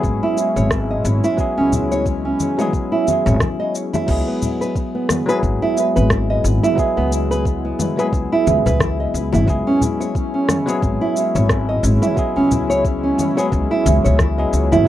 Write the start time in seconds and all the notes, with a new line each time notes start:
Already playing: F#3 G#3 B3 C#4 E4 G#4
0.03 G#1, kick, cabasa
0.23 E4
0.37 high bongo, cabasa
0.56 G#1 C#5, high conga, cabasa
0.71 kick, cross-stick, cabasa
0.90 D#5
1.05 G#1, cabasa
1.24 E4, cabasa
1.36 F#3 B3 E4 G#4, kick, cabasa
1.57 C#2 C#4
1.73 low conga, cabasa
1.92 C#5, high bongo, cabasa
2.06 kick, cabasa
2.25 C#4
2.40 high conga, cabasa
2.57 F#3 B3 E4 C#5, mid tom, high bongo, cabasa
2.61 G#4
2.73 kick, cabasa
2.92 E4
3.07 high bongo, high conga, cabasa
3.26 G#1 C#5, low conga, cabasa
3.40 kick, cross-stick, high conga, cabasa
3.60 D#5
3.75 cabasa
3.93 E4, high bongo, high conga, cabasa
4.07 C#2 F#3 G#3 B3 E4 G#4, kick, crash, cabasa
4.27 B3
4.42 low conga, cabasa
4.61 B4, high bongo, cabasa
4.75 kick, cabasa
4.95 B3
5.09 cross-stick, mid tom, high conga, cabasa
5.26 F#3 B3 E4 G#4 B4, high bongo, cabasa
5.43 G#1, kick, cabasa
5.62 E4
5.77 high bongo, cabasa
5.96 G#1 B4, high conga, cabasa
6.10 kick, cross-stick, cabasa
6.30 D#5
6.44 G#1, cabasa
6.63 E4, mid tom, cabasa
6.75 F#3 B3 E4, kick, cabasa
6.79 G#4
6.97 C#2 B3
7.12 cabasa
7.31 B4, cabasa
7.45 kick, cabasa
7.65 B3
7.79 mid tom, high conga, cabasa
7.96 F#3 B3 E4 G#4 B4, high bongo, cabasa
8.13 C#2, kick, cabasa
8.32 E4
8.46 C#2, high bongo, high conga, cabasa
8.66 C#2 B4, low conga, cabasa
8.80 kick, cross-stick, high conga, cabasa
9.00 D#5
9.14 C#2, cabasa
9.33 G#1 E4, mid tom, high bongo, high conga, cabasa
9.45 C#2 F#3 G#3 B3 C#4 E4, kick, cabasa
9.50 G#4
9.67 C#4
9.81 low conga, cabasa
10.00 C#5, high bongo, cabasa
10.15 kick, cabasa
10.34 C#4
10.49 cross-stick, mid tom, high conga, cabasa
10.66 F#3 B3 E4 G#4 C#5, high bongo, cabasa
10.82 G#1, kick, cabasa
11.01 E4
11.16 high bongo, cabasa
11.35 G#1 C#5, high conga, cabasa
11.49 kick, cross-stick, cabasa
11.69 D#5
11.83 G#1, cabasa
12.02 E4, mid tom, cabasa
12.15 F#3 B3 E4, kick, cabasa
12.19 G#4
12.36 C#2 C#4
12.51 low conga, cabasa
12.70 C#5, high bongo, cabasa
12.85 kick, cabasa
13.03 C#4
13.18 mid tom, high conga, cabasa
13.35 F#3 B3 E4 G#4 C#5, high bongo, cabasa
13.52 C#2, kick, cabasa
13.71 E4
13.86 C#2, high bongo, high conga, cabasa
14.04 C#2 C#5, low conga, cabasa
14.19 kick, cross-stick, high conga, cabasa
14.38 F#3 B3 E4 G#4 D#5
14.53 C#2, cabasa
14.72 G#1 E4, mid tom, high bongo, high conga, cabasa
14.85 F#3